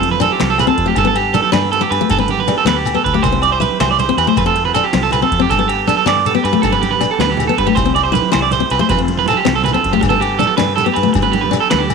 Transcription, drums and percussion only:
0.02 ride, high conga, shekere
0.11 low conga
0.20 ride, muted conga, low agogo, shekere
0.40 snare, ride, high conga
0.49 shekere
0.58 ride, muted conga, low conga, low agogo, shekere
0.78 kick, ride
0.96 kick, ride, muted conga, low conga, low agogo, shekere
1.06 high conga, low conga
1.16 ride, low agogo
1.25 low conga
1.34 ride, muted conga, high conga, shekere
1.53 snare, ride, low conga, low agogo
1.64 high conga
1.73 ride, muted conga
1.83 shekere
1.92 ride, low conga, low agogo
2.01 high conga, low conga, shekere
2.10 kick, ride, muted conga, low agogo, shekere
2.28 ride, high conga, low conga, shekere
2.39 low conga
2.48 snare, ride, muted conga, low agogo, shekere
2.67 snare, ride, high conga
2.86 ride, low conga, low agogo, shekere
3.05 kick, ride, low conga
3.23 kick, ride, muted conga, low conga, low agogo, shekere
3.34 low conga
3.42 ride, low agogo
3.61 ride, high conga, shekere
3.80 snare, ride, low conga, low agogo
3.91 high conga
3.99 ride, muted conga, shekere
4.18 ride, low agogo
4.28 high conga, low conga
4.36 kick, ride, muted conga, low conga, low agogo, shekere
4.55 ride, high conga, shekere
4.66 low conga
4.74 snare, ride, muted conga, low agogo, shekere
4.93 snare, ride, high conga
5.04 shekere
5.11 ride, muted conga, low conga, low agogo, shekere
5.32 kick, ride
5.49 kick, ride, muted conga, low conga, low agogo, shekere
5.58 high conga, low conga
5.69 ride, low agogo
5.87 ride, muted conga, high conga, shekere
6.06 snare, ride, low conga, low agogo
6.17 high conga
6.26 ride, shekere
6.45 ride, low agogo
6.54 high conga, low conga
6.63 kick, ride, muted conga, low conga, low agogo, shekere
6.83 ride, high conga, shekere
6.91 low conga
7.01 snare, ride, low agogo, shekere
7.19 snare, ride, high conga
7.31 shekere
7.37 ride, muted conga, low conga, low agogo, shekere
7.48 high conga
7.58 kick, ride
7.76 kick, ride, muted conga, low conga, low agogo, shekere
7.86 high conga, low conga
7.96 ride, low agogo
8.14 ride, muted conga, high conga, shekere
8.32 snare, ride, low conga, low agogo
8.42 high conga
8.51 ride, muted conga, shekere
8.70 ride, low agogo
8.81 high conga, low conga
8.89 kick, ride, muted conga, low conga, low agogo, shekere
9.08 ride, high conga, shekere
9.17 low conga
9.26 snare, ride, muted conga, low agogo, shekere
9.45 snare, ride, high conga
9.58 shekere
9.64 ride, muted conga, low conga, low agogo
9.68 shekere
9.73 high conga
9.84 kick, ride
10.01 kick, ride, muted conga, low agogo, shekere
10.11 high conga, low conga
10.21 ride, low agogo
10.39 ride, muted conga, high conga, shekere
10.58 snare, ride, low conga, low agogo
10.68 high conga
10.78 ride, muted conga, low conga, shekere
10.95 ride, low agogo
11.07 high conga, low conga, shekere
11.14 kick, ride, muted conga, low agogo, shekere
11.26 low conga
11.33 ride, high conga
11.44 low conga
11.52 snare, ride, muted conga, low agogo, shekere
11.71 snare, ride, high conga
11.90 ride, muted conga, low agogo, shekere

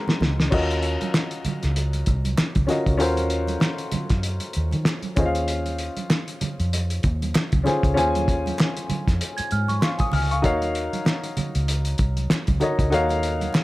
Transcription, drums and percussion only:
0.08 snare, muted conga, high conga
0.21 snare, low conga
0.40 snare
0.52 kick, crash, muted conga
0.71 closed hi-hat
0.83 closed hi-hat
1.01 closed hi-hat, high conga
1.14 snare, clap
1.31 closed hi-hat
1.45 closed hi-hat, high conga, low conga
1.63 snare, closed hi-hat
1.76 closed hi-hat, muted conga
1.93 closed hi-hat, muted conga
2.06 kick, closed hi-hat
2.25 closed hi-hat, high conga
2.38 snare, clap
2.55 kick, closed hi-hat, high conga
2.68 snare, closed hi-hat, low conga
2.86 kick, closed hi-hat
2.99 closed hi-hat, muted conga
3.17 closed hi-hat, muted conga
3.30 closed hi-hat
3.47 closed hi-hat, high conga
3.60 snare, clap, muted conga
3.78 closed hi-hat
3.92 closed hi-hat, high conga, low conga
4.10 kick, snare, closed hi-hat
4.23 closed hi-hat
4.40 closed hi-hat, muted conga
4.53 closed hi-hat
4.71 closed hi-hat, high conga
4.85 snare, clap, muted conga
5.03 closed hi-hat, muted conga, high conga
5.16 kick, closed hi-hat, low conga
5.35 closed hi-hat
5.48 closed hi-hat
5.66 closed hi-hat, muted conga
5.79 closed hi-hat
5.97 closed hi-hat, high conga
6.10 snare, clap
6.28 closed hi-hat
6.41 closed hi-hat, high conga, low conga
6.60 closed hi-hat
6.73 closed hi-hat, muted conga
6.90 closed hi-hat
7.03 kick, closed hi-hat
7.22 closed hi-hat, high conga
7.35 snare, clap
7.52 kick, closed hi-hat, muted conga, high conga
7.66 snare, closed hi-hat, low conga
7.83 kick, closed hi-hat
7.97 closed hi-hat, muted conga
8.15 closed hi-hat, muted conga, high conga
8.28 kick, closed hi-hat
8.46 closed hi-hat, high conga
8.58 snare, clap, muted conga
8.77 closed hi-hat, muted conga
8.90 closed hi-hat, high conga, low conga
9.08 kick, snare, closed hi-hat
9.20 closed hi-hat, muted conga
9.38 closed hi-hat, muted conga
9.51 closed hi-hat
9.68 closed hi-hat, high conga
9.81 snare, clap, muted conga
9.99 kick, closed hi-hat, high conga
10.12 open hi-hat, low conga
10.31 closed hi-hat
10.43 kick, closed hi-hat, muted conga
10.62 closed hi-hat, muted conga
10.75 closed hi-hat
10.93 closed hi-hat, high conga
11.05 snare, clap, muted conga
11.24 closed hi-hat, muted conga
11.37 closed hi-hat, high conga, low conga
11.55 closed hi-hat
11.68 closed hi-hat
11.85 closed hi-hat
11.98 kick, closed hi-hat
12.17 closed hi-hat, high conga
12.30 snare, clap
12.47 kick, closed hi-hat, muted conga, high conga
12.60 closed hi-hat, low conga
12.79 kick, closed hi-hat
12.92 closed hi-hat
13.09 closed hi-hat, muted conga
13.23 closed hi-hat
13.41 closed hi-hat, high conga
13.53 snare, clap, muted conga

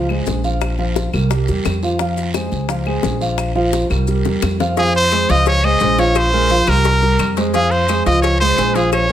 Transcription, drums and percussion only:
0.09 high bongo, claves
0.26 high bongo, low bongo, short guiro, maracas
0.44 short guiro, maracas
0.61 high bongo, long guiro, claves, maracas
0.79 high bongo
0.96 high bongo, short guiro, maracas
1.13 high bongo, short guiro, claves, maracas
1.31 high bongo, long guiro, maracas
1.48 high bongo, maracas
1.65 high bongo, low bongo, short guiro, claves, maracas
1.82 short guiro, maracas
1.99 high bongo, long guiro, maracas
2.17 high bongo, maracas
2.34 high bongo, short guiro, claves, maracas
2.52 high bongo, short guiro, maracas
2.69 high bongo, long guiro, maracas
2.86 high bongo, claves
3.03 high bongo, low bongo, short guiro, maracas
3.21 short guiro, maracas
3.38 high bongo, long guiro, claves, maracas
3.56 high bongo
3.73 high bongo, short guiro, maracas
3.90 short guiro, claves, maracas
4.07 long guiro, maracas
4.25 low bongo, maracas
4.42 low bongo, short guiro, claves, maracas
4.60 low bongo, short guiro, maracas
4.77 cowbell, long guiro, maracas
4.95 maracas
5.11 cowbell, short guiro, claves, maracas
5.29 cowbell, short guiro, maracas
5.46 cowbell, long guiro, maracas
5.63 claves, maracas
5.80 cowbell, short guiro, maracas
5.98 cowbell, short guiro, maracas
6.15 cowbell, long guiro, claves, maracas
6.32 maracas
6.49 cowbell, short guiro, maracas
6.67 cowbell, short guiro, claves, maracas
6.84 cowbell, long guiro, maracas
7.02 maracas
7.19 cowbell, short guiro, claves, maracas
7.36 cowbell, short guiro, maracas
7.54 cowbell, long guiro, maracas
7.71 maracas
7.88 cowbell, short guiro, claves, maracas
8.06 cowbell, short guiro, maracas
8.23 cowbell, long guiro, maracas
8.41 claves
8.58 cowbell, short guiro, maracas
8.75 cowbell, short guiro, maracas
8.92 cowbell, long guiro, claves, maracas

